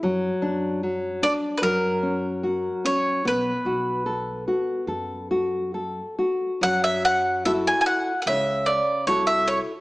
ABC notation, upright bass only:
X:1
M:4/4
L:1/8
Q:1/4=74
K:Bm
V:1 name="Upright bass" clef=bass
F,, F,,3 F,,4 | B,,, B,,,3 F,,4 | [K:F#m] F,,4 C,,2 ^B,,,2 |]